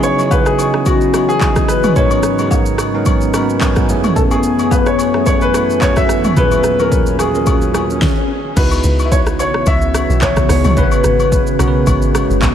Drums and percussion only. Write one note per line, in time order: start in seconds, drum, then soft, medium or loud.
0.03 shaker medium
0.19 high agogo medium
0.19 shaker soft
0.31 kick loud
0.31 low woodblock medium
0.31 shaker medium
0.46 cross-stick medium
0.46 shaker medium
0.59 high agogo medium
0.59 shaker medium
0.74 cross-stick medium
0.86 kick loud
0.86 high agogo medium
0.86 shaker medium
1.01 shaker soft
1.14 cross-stick medium
1.14 high agogo medium
1.14 shaker loud
1.30 shaker soft
1.41 kick medium
1.41 clap loud
1.41 high agogo medium
1.41 shaker medium
1.56 kick medium
1.56 cross-stick medium
1.56 shaker medium
1.68 cross-stick medium
1.68 shaker loud
1.83 mid tom loud
1.83 high agogo medium
1.83 shaker medium
1.96 kick loud
1.96 shaker medium
2.11 high agogo medium
2.11 shaker medium
2.23 cross-stick medium
2.23 shaker medium
2.39 high agogo medium
2.39 shaker soft
2.51 kick loud
2.51 low woodblock medium
2.51 shaker medium
2.66 shaker medium
2.78 cross-stick medium
2.78 high agogo medium
2.78 shaker medium
3.05 kick loud
3.05 high agogo medium
3.05 shaker medium
3.21 shaker soft
3.34 cross-stick medium
3.34 high agogo medium
3.34 shaker loud
3.50 shaker soft
3.61 kick medium
3.61 clap loud
3.61 high agogo medium
3.61 shaker medium
3.76 kick medium
3.76 cross-stick medium
3.76 shaker medium
3.89 shaker loud
4.04 mid tom loud
4.04 high agogo medium
4.04 shaker medium
4.16 kick loud
4.16 shaker medium
4.31 high agogo medium
4.31 shaker medium
4.43 shaker medium
4.59 high agogo medium
4.59 shaker soft
4.71 kick loud
4.71 low woodblock medium
4.71 shaker medium
4.86 cross-stick medium
4.86 shaker medium
4.99 high agogo medium
4.99 shaker medium
5.14 cross-stick medium
5.26 kick loud
5.26 high agogo medium
5.26 shaker medium
5.41 shaker soft
5.54 cross-stick medium
5.54 high agogo medium
5.54 shaker loud
5.70 shaker soft
5.81 kick medium
5.81 clap medium
5.81 high agogo medium
5.81 shaker medium
5.96 kick medium
5.96 cross-stick medium
5.96 shaker medium
6.09 cross-stick loud
6.09 shaker loud
6.24 mid tom loud
6.24 high agogo medium
6.24 shaker medium
6.37 kick loud
6.37 shaker medium
6.51 high agogo medium
6.51 shaker medium
6.63 cross-stick medium
6.63 shaker medium
6.79 high agogo medium
6.79 shaker medium
6.92 kick loud
6.92 shaker medium
7.06 shaker medium
7.19 cross-stick medium
7.19 high agogo medium
7.19 shaker medium
7.35 shaker medium
7.46 kick loud
7.46 high agogo medium
7.46 shaker medium
7.61 shaker soft
7.74 cross-stick medium
7.74 high agogo medium
7.74 shaker loud
7.90 shaker soft
8.02 kick loud
8.02 snare medium
8.57 kick loud
8.57 crash loud
8.57 shaker medium
8.71 high agogo medium
8.71 shaker medium
8.83 shaker medium
8.99 high agogo medium
8.99 shaker medium
9.12 kick loud
9.12 shaker medium
9.26 cross-stick medium
9.26 shaker medium
9.39 high agogo medium
9.39 shaker medium
9.54 cross-stick medium
9.66 kick loud
9.66 high agogo medium
9.66 shaker medium
9.81 shaker soft
9.94 cross-stick loud
9.94 high agogo medium
9.94 shaker loud
10.10 shaker soft
10.21 kick loud
10.21 clap loud
10.21 high agogo medium
10.21 shaker medium
10.36 kick loud
10.36 cross-stick loud
10.36 shaker medium
10.49 cross-stick medium
10.49 open hi-hat medium
10.49 shaker loud
10.64 mid tom loud
10.64 high agogo medium
10.64 shaker medium
10.77 kick loud
10.77 shaker medium
10.92 high agogo medium
10.92 shaker medium
11.04 cross-stick medium
11.04 shaker medium
11.20 high agogo medium
11.20 shaker medium
11.32 kick loud
11.32 shaker medium
11.47 shaker medium
11.59 cross-stick medium
11.59 high agogo medium
11.59 shaker medium
11.86 kick loud
11.86 high agogo medium
11.86 shaker medium
12.02 shaker soft
12.15 cross-stick loud
12.15 high agogo medium
12.15 shaker loud
12.31 shaker medium
12.42 kick medium
12.42 clap loud
12.42 high agogo medium
12.42 shaker medium